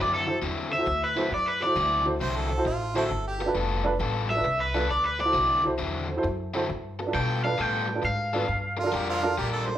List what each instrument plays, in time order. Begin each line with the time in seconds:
Already playing: upright bass F#2, overdriven electric guitar D3 F#3
0.00 overdriven electric guitar C4 E4 D5
0.14 overdriven electric guitar A4
0.27 upright piano E4 F#4 A4 C5, muted overdriven electric guitar stroke
0.42 upright bass E2, overdriven electric guitar D3 F#3 C4 E4
0.71 upright piano A4 C5, overdriven electric guitar E5, muted overdriven electric guitar stroke
0.78 upright piano E4 F#4 A4 C5
0.86 upright bass D2, muted overdriven electric guitar stroke
1.04 overdriven electric guitar B4
1.16 overdriven electric guitar D3 F#3 C4 E4, upright piano E4 F#4 A4 C5
1.31 upright bass F#2, overdriven electric guitar D5, muted overdriven electric guitar stroke
1.47 overdriven electric guitar B4
1.60 upright piano A4 C5, overdriven electric guitar D5, muted overdriven electric guitar stroke
1.66 upright piano E4 F#4 A4 C5
1.76 upright bass D2, overdriven electric guitar D3 F#3 C4 E4
2.04 upright piano E4 F#4 A4 C5, muted overdriven electric guitar stroke
2.21 upright bass C2, overdriven electric guitar D3 F#3 C4 E4, harmonica C5
2.36 harmonica A4
2.49 upright piano A4 C5, muted overdriven electric guitar stroke
2.57 upright piano E4 F#4 A4 C5
2.65 upright bass A1, harmonica F4, muted overdriven electric guitar stroke
2.94 overdriven electric guitar D3 F#3 C4 E4, upright piano E4 F#4 A4 C5, harmonica E4 F#4 A4
3.11 upright bass G1, muted overdriven electric guitar stroke
3.28 harmonica G4
3.39 upright piano A4 B4, muted overdriven electric guitar stroke
3.46 upright piano D4 F4 A4 B4
3.55 upright bass F1, overdriven electric guitar G3 B3 F4 A4
3.84 upright piano D4 F4 A4 B4, muted overdriven electric guitar stroke
3.99 upright bass A1, overdriven electric guitar G3 B3 F4 A4
4.30 upright piano A4 B4, overdriven electric guitar E5, muted overdriven electric guitar stroke
4.36 upright piano D4 F4 A4 B4
4.44 upright bass C2, muted overdriven electric guitar stroke
4.60 overdriven electric guitar B4
4.74 overdriven electric guitar G3 B3 F4 A4, upright piano D4 F4 A4 B4
4.89 upright bass D2, overdriven electric guitar D5, muted overdriven electric guitar stroke
5.05 overdriven electric guitar B4
5.19 upright piano A4 C5, overdriven electric guitar D5, muted overdriven electric guitar stroke
5.25 upright piano E4 F#4 A4 C5
5.33 upright bass C2, overdriven electric guitar D3 F#3 C4 E4
5.64 upright piano E4 F#4 A4 C5, muted overdriven electric guitar stroke
5.78 upright bass E2, overdriven electric guitar D3 F#3 C4 E4
6.09 upright piano A4 C5, muted overdriven electric guitar stroke
6.16 upright piano E4 F#4 A4 C5
6.23 upright bass F#2, muted overdriven electric guitar stroke
6.54 overdriven electric guitar D3 F#3 C4 E4, upright piano E4 F#4 A4 C5
6.69 upright bass G2, muted overdriven electric guitar stroke
6.99 upright piano A4 B4, muted overdriven electric guitar stroke
7.07 upright piano D4 F4 A4 B4
7.14 upright bass B2, overdriven electric guitar G3 B3 F4 A4 G5
7.44 upright piano D4 F4 A4 B4, overdriven electric guitar F5, muted overdriven electric guitar stroke
7.58 upright bass A2, overdriven electric guitar G3 B3 F4 A4 G5
7.89 upright piano A4 B4, muted overdriven electric guitar stroke
7.95 upright piano D4 F4 A4 B4
8.02 upright bass G#2, overdriven electric guitar F5, muted overdriven electric guitar stroke
8.33 overdriven electric guitar G3 B3 F4 A4, upright piano D4 F4 A4 B4
8.47 upright bass G2, muted overdriven electric guitar stroke
8.77 harmonica F4, upright piano A4 A#4, muted overdriven electric guitar stroke
8.84 upright piano D4 F4 A4 A#4
8.92 upright bass F2, overdriven electric guitar G3 D4 F4 A#4, harmonica G4
9.10 harmonica C4 D4 F4
9.23 upright piano D4 F4 A4 A#4, muted overdriven electric guitar stroke
9.38 upright bass A#1, overdriven electric guitar G3 D4 F4 A#4, harmonica G4
9.52 harmonica A4
9.67 upright piano A4 A#4, harmonica C5, muted overdriven electric guitar stroke